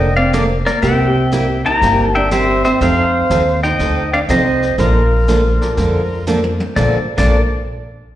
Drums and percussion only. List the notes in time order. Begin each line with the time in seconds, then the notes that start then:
0.33 snare, hi-hat pedal
0.67 snare
0.83 brush sweep, snare
1.32 snare, hi-hat pedal
1.82 brush sweep, snare
2.31 snare, hi-hat pedal
2.64 snare
2.81 brush sweep, snare
3.30 snare, hi-hat pedal
3.63 snare
3.79 brush sweep, snare
4.29 snare, hi-hat pedal
4.62 snare
4.79 brush sweep, snare
5.28 snare, hi-hat pedal
5.61 snare
5.78 brush sweep, snare
6.27 hi-hat pedal, high tom
6.44 high tom
6.60 high tom
6.77 kick, snare
7.18 kick, snare, crash